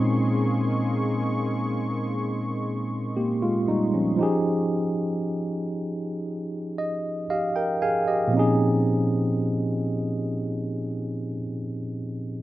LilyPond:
<<
  \new Staff \with { instrumentName = "Analog synth pad" } { \time 4/4 \key bes \dorian \tempo 4 = 58 <bes aes' ees'' c''' des'''>1 | r1 | r1 | }
  \new Staff \with { instrumentName = "Tine electric piano" } { \time 4/4 \key bes \dorian << { r2. <bes g'>16 <aes f'>16 <g ees'>16 <f des'>16~ | <f des'>16 r2 r16 ees''8 <g' ees'' f''>16 <bes' g''>16 <aes' f'' aes''>16 <g' ees''>16~ | <g' ees''>16 r2. r8. | } \\ { <bes, aes c' des' ees'>2.~ <bes, aes c' des' ees'>8 r8 | <f ees' g' aes'>1 | <bes, f c' des' ees' aes'>1 | } >> }
>>